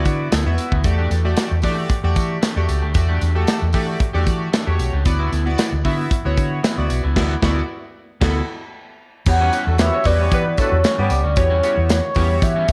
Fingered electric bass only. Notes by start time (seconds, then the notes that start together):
0.06 D3
0.32 D2
0.46 E2
0.72 D2
0.84 E2
1.11 E2
1.51 E2
1.63 E3
2.04 E2
2.16 E3
2.56 E2
2.69 C#2
2.83 D2
2.95 E2
3.22 E2
3.62 E2
3.74 E3
4.14 E2
4.27 E3
4.67 E2
4.79 B1
4.93 C#2
5.06 D2
5.32 D2
5.72 D2
5.85 D3
6.25 D2
6.38 D3
6.78 D2
6.90 B1
7.04 C#2
7.16 D2
7.43 D2
8.22 D2
9.27 E2
9.67 E2
10.06 E2
10.32 E3
10.72 E2
10.98 G2
11.10 C#2
11.24 D2
11.37 E2
11.77 E2
12.16 E2
12.42 E3